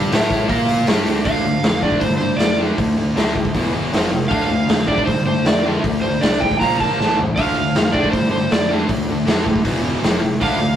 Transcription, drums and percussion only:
0.12 snare, open hi-hat
0.31 kick, open hi-hat
0.49 kick, open hi-hat
0.69 open hi-hat
0.87 snare, open hi-hat
1.06 open hi-hat
1.25 kick, open hi-hat
1.63 snare, open hi-hat
1.82 kick
1.92 kick
2.01 kick, open hi-hat
2.39 snare, open hi-hat
2.78 kick, open hi-hat
3.17 snare, open hi-hat
3.36 kick
3.45 kick
3.55 kick, open hi-hat
3.93 snare, open hi-hat
4.31 kick, open hi-hat
4.69 snare, open hi-hat
4.88 kick
4.98 kick
5.07 kick, open hi-hat
5.45 snare, open hi-hat
5.84 kick, open hi-hat
6.22 snare, open hi-hat
6.42 kick
6.52 kick
6.61 kick, open hi-hat
6.80 kick
7.00 snare
7.19 floor tom
7.38 kick, open hi-hat
7.75 snare, open hi-hat
7.94 kick
8.04 kick
8.13 kick, open hi-hat
8.51 snare, open hi-hat
8.89 kick, open hi-hat
9.27 snare, open hi-hat
9.46 kick
9.56 kick
9.65 kick, open hi-hat
10.03 snare, open hi-hat
10.41 kick, open hi-hat

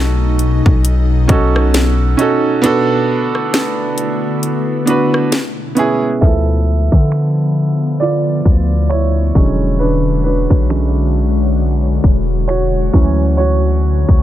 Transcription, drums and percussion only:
0.39 closed hi-hat
0.66 kick
0.85 closed hi-hat
1.29 kick, closed hi-hat
1.56 cross-stick
1.74 snare, closed hi-hat
2.19 closed hi-hat
2.64 closed hi-hat
3.35 cross-stick
3.54 snare, closed hi-hat
3.98 closed hi-hat
4.43 closed hi-hat
4.87 closed hi-hat
5.14 cross-stick
5.32 snare, closed hi-hat
5.77 closed hi-hat
6.22 kick, closed hi-hat
6.92 kick
7.12 finger snap, closed hi-hat
7.56 closed hi-hat
8.01 closed hi-hat
8.45 kick, closed hi-hat
8.90 finger snap, closed hi-hat
9.35 kick
9.80 closed hi-hat
10.50 kick
10.70 finger snap, closed hi-hat
11.14 closed hi-hat
11.59 closed hi-hat
12.04 kick, closed hi-hat
12.49 finger snap, closed hi-hat
12.93 kick
13.38 closed hi-hat
14.09 kick

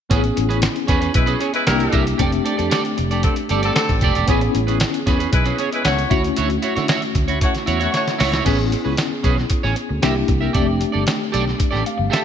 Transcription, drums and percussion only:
0.11 kick, closed hi-hat
0.24 closed hi-hat
0.37 closed hi-hat
0.51 closed hi-hat
0.62 snare, closed hi-hat
0.76 closed hi-hat
0.88 kick, snare, closed hi-hat
1.02 closed hi-hat
1.14 kick, closed hi-hat
1.27 closed hi-hat
1.41 closed hi-hat
1.54 closed hi-hat
1.67 snare, closed hi-hat
1.80 closed hi-hat
1.93 kick, closed hi-hat
2.07 closed hi-hat
2.19 kick, closed hi-hat
2.32 closed hi-hat
2.46 closed hi-hat
2.59 closed hi-hat
2.71 snare, closed hi-hat
2.85 closed hi-hat
2.98 closed hi-hat
3.11 closed hi-hat
3.23 kick, closed hi-hat
3.36 closed hi-hat
3.49 closed hi-hat
3.63 closed hi-hat
3.76 snare, closed hi-hat
3.89 kick, closed hi-hat
4.01 kick, closed hi-hat
4.15 closed hi-hat
4.28 kick, closed hi-hat
4.41 closed hi-hat
4.55 closed hi-hat
4.68 closed hi-hat
4.80 snare, closed hi-hat
4.94 closed hi-hat
5.07 kick, snare, closed hi-hat
5.20 closed hi-hat
5.33 kick, closed hi-hat
5.46 closed hi-hat
5.58 closed hi-hat
5.72 closed hi-hat
5.85 snare, closed hi-hat
5.98 closed hi-hat
6.11 kick, closed hi-hat
6.24 closed hi-hat
6.36 closed hi-hat
6.50 closed hi-hat
6.62 closed hi-hat
6.76 snare, closed hi-hat
6.88 snare, closed hi-hat
7.02 closed hi-hat
7.15 kick, closed hi-hat
7.28 closed hi-hat
7.41 kick, closed hi-hat
7.55 snare, closed hi-hat
7.67 closed hi-hat
7.81 closed hi-hat
7.94 snare, closed hi-hat
8.08 snare, closed hi-hat
8.20 snare, open hi-hat
8.33 snare, closed hi-hat
8.46 kick, closed hi-hat, crash
8.72 closed hi-hat
8.97 snare, closed hi-hat
9.24 kick, closed hi-hat
9.38 snare
9.50 kick, closed hi-hat
9.64 snare
9.76 closed hi-hat
10.03 snare, closed hi-hat
10.28 kick, closed hi-hat
10.55 kick, closed hi-hat
10.81 closed hi-hat
11.07 snare, closed hi-hat
11.34 closed hi-hat
11.48 snare
11.60 kick, closed hi-hat
11.74 snare
11.86 closed hi-hat
12.13 snare, closed hi-hat

